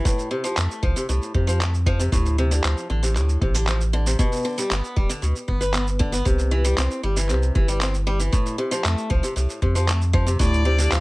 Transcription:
0.05 A2, kick, shaker
0.19 shaker
0.31 C3
0.44 F3, shaker
0.57 F2 A3, clap, shaker
0.71 shaker
0.83 C2 F3, kick
0.96 C3, shaker
1.09 C2 A2, shaker
1.22 shaker
1.34 F2 C3, kick
1.47 F3, shaker
1.61 A3, clap, shaker
1.74 shaker
1.86 F3, kick
1.99 C3, shaker
2.12 D2 A2, kick, shaker
2.26 shaker
2.38 C3
2.51 D3, shaker
2.64 D2 F3, clap, shaker
2.77 shaker
2.90 A1 D3
3.03 C3, shaker
3.16 D2 A2, clap, shaker
3.29 shaker
3.41 A1 C3, kick
3.54 D3, shaker
3.67 F3, clap, shaker
3.81 shaker
3.93 D3
4.06 C3, shaker
4.19 B2, kick, shaker
4.32 shaker
4.36 shaker
4.39 shaker
4.45 D3, shaker
4.49 shaker
4.52 shaker
4.55 G3, shaker
4.58 shaker
4.71 G1 B3, clap, shaker
4.84 shaker
4.96 D1 G3, kick
5.09 D3, shaker
5.22 D2 B2, shaker
5.36 shaker
5.48 G1 B3, kick
5.61 B4, shaker
5.74 B3, clap, shaker
5.87 shaker
5.99 D3, kick
6.12 B3, shaker
6.25 C2 C3, kick, shaker
6.39 shaker
6.51 E3
6.65 G3, shaker
6.77 C2 C4, clap, shaker
6.91 shaker
7.03 G1 G3
7.17 E3, shaker
7.29 C2 C3, clap, shaker
7.42 shaker
7.55 G1 E3, kick
7.68 G3, shaker
7.81 C4, clap, shaker
7.94 shaker
8.07 G3
8.20 E3, shaker
8.32 A2, kick, shaker
8.46 shaker
8.58 C3
8.71 F3, shaker
8.84 F2 A3, clap, shaker
8.98 shaker
9.10 C2 F3, kick
9.23 C3, shaker
9.36 C2 A2, shaker
9.50 shaker
9.62 F2 C3, kick
9.75 F3, shaker
9.88 A3, clap, shaker
10.01 shaker
10.13 F3, kick
10.27 C3, shaker
10.39 D2 A2 D5, kick, shaker
10.54 shaker
10.65 C3
10.78 D3, shaker
10.91 D2 F3 F5, clap, shaker

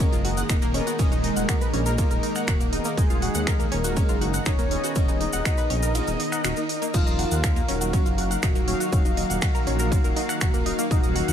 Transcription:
Already playing: D#3 G#3 A#3 D#4 G#4 A#4 D#5
0.12 F#1 F4 F5, closed hi-hat, cabasa
0.25 F#4 F#5, open hi-hat
0.37 F#5 F#6, closed hi-hat, cabasa
0.49 D#1 A#3 D#4 A#4 D#5, finger snap, kick, closed hi-hat, ride, cabasa
0.62 A#3 A#4, closed hi-hat, cabasa
0.74 B3 C#4 G#4 C#5 D#5, open hi-hat
0.87 F#4 F#5, closed hi-hat, cabasa
0.99 D#1 G#3 C#4 G#4 C#5 D#5, kick, closed hi-hat, ride, cabasa
1.12 D#4 D#5, closed hi-hat, cabasa
1.24 A#3 D#4 A#4 D#5, open hi-hat
1.36 D#1 F#5 F#6, closed hi-hat, cabasa
1.49 F#4 F#5, finger snap, kick, closed hi-hat, ride, cabasa
1.61 B4 B5, closed hi-hat, cabasa
1.73 A#1 C#4 C#5, open hi-hat
1.86 A#4 A#5, closed hi-hat, cabasa
1.98 F4 F5, kick, closed hi-hat, ride, cabasa
2.11 D#1 A#4 A#5, closed hi-hat, cabasa
2.23 D#4 D#5, open hi-hat
2.35 F#5 F#6, finger snap, closed hi-hat, cabasa
2.48 D#1 F#4 F#5, finger snap, kick, closed hi-hat, ride, cabasa
2.60 A#3 A#4, closed hi-hat, cabasa
2.73 B3 D#4 G#4 D#5, open hi-hat
2.84 A#3 A#4, closed hi-hat, cabasa
2.97 D#1 G#3 D#4 G#4 A#4 D#5, kick, closed hi-hat, ride, cabasa
3.10 F4 F5, closed hi-hat, cabasa
3.22 F#4 F#5, open hi-hat
3.35 D#2 F#5 F#6, closed hi-hat, cabasa
3.47 A#4 A#5, finger snap, kick, closed hi-hat, ride, cabasa
3.60 A#3 A#4, closed hi-hat, cabasa
3.72 D#1 A#3 C#4 A#4 C#5, open hi-hat
3.84 F#4 F#5, closed hi-hat, cabasa
3.97 C#4 C#5, kick, closed hi-hat, ride, cabasa
4.09 F#1 F4 F5, closed hi-hat, cabasa
4.21 F#4 F#5, open hi-hat
4.34 F#5 F#6, closed hi-hat, cabasa
4.46 D#1 C#4 D#4 C#5 D#5, finger snap, kick, closed hi-hat, ride, cabasa
4.59 A#3 A#4, closed hi-hat, cabasa
4.71 B3 C#4 G#4 C#5 D#5, open hi-hat
4.84 F#4 F#5, closed hi-hat, cabasa
4.95 D#1 B3 C#4 G#4 C#5 D#5, kick, closed hi-hat, ride, cabasa
5.08 D#4 D#5, closed hi-hat, cabasa
5.21 D#4 D#5, open hi-hat
5.33 D#1 F#5 F#6, closed hi-hat, cabasa
5.45 F#4 F#5, finger snap, kick, closed hi-hat, ride, cabasa
5.57 B4 B5, closed hi-hat, cabasa
5.70 A#1 C#4 C#5, open hi-hat
5.83 A#4 A#5, closed hi-hat, cabasa
5.95 F4 F5, closed hi-hat, ride, swell, cabasa
6.07 D#1 A#4 A#5, closed hi-hat, cabasa
6.20 D#4 D#5, open hi-hat
6.32 F#5 F#6, finger snap, closed hi-hat, cabasa
6.44 D#1 F#4 F#5, finger snap, closed hi-hat, ride, cabasa
6.56 A#3 A#4, closed hi-hat, cabasa
6.69 D#4 D#5, open hi-hat
6.82 A#3 A#4, closed hi-hat, cabasa
6.94 D#1 D#3 F3 A#3 D#4 F4 A#4 D#5 F5, kick, closed hi-hat, crash, ride, cabasa
7.07 D#5 D#6, closed hi-hat, cabasa
7.19 F#4 F#5, open hi-hat
7.31 D#2 F#5 F#6, closed hi-hat, cabasa
7.44 A#4 A#5, finger snap, kick, closed hi-hat, ride, cabasa
7.56 A#3 A#4, closed hi-hat, cabasa
7.68 D#1 F#3 C#4 F#4 C#5, open hi-hat
7.81 F#4 F#5, closed hi-hat, cabasa
7.93 C#4 C#5, kick, closed hi-hat, ride, cabasa
8.06 F#1 F4 F5, closed hi-hat, cabasa
8.18 F#4 F#5, open hi-hat
8.31 F#5 F#6, closed hi-hat, cabasa
8.43 D#1 F#3 D#4 F#4 D#5, finger snap, kick, closed hi-hat, ride, cabasa
8.55 A#3 A#4, closed hi-hat, cabasa
8.68 C#4 D#4 F#4 C#5 F5, open hi-hat
8.80 F#4 F#5, closed hi-hat, cabasa
8.93 D#1 C#4 D#4 F#4 C#5 F5, kick, closed hi-hat, ride, cabasa
9.05 D#4 D#5, closed hi-hat, cabasa
9.17 F#3 D#4 F#4 D#5, open hi-hat
9.30 D#1 F#5 F#6, closed hi-hat, cabasa
9.42 F#4 F#5, finger snap, kick, closed hi-hat, ride, cabasa
9.55 A#4 A#5, closed hi-hat, cabasa
9.67 A#1 C#4 C#5, open hi-hat
9.79 A#4 A#5, closed hi-hat, cabasa
9.92 F4 F5, kick, closed hi-hat, ride, cabasa
10.04 D#1 A#4 A#5, closed hi-hat, cabasa
10.16 D#4 D#5, open hi-hat
10.29 F#5 F#6, finger snap, closed hi-hat, cabasa
10.41 D#1 F#4 F#5, finger snap, kick, closed hi-hat, ride, cabasa
10.54 A#3 A#4, closed hi-hat, cabasa
10.66 D#4 F#4 D#5 F5, open hi-hat
10.79 A#3 A#4, closed hi-hat, cabasa
10.91 D#1 F#3 D#4 F#4 D#5 F5, kick, closed hi-hat, ride, cabasa
11.03 D#5 D#6, closed hi-hat, cabasa
11.16 F#4 F#5, open hi-hat
11.28 D#2 F#5 F#6, closed hi-hat, cabasa

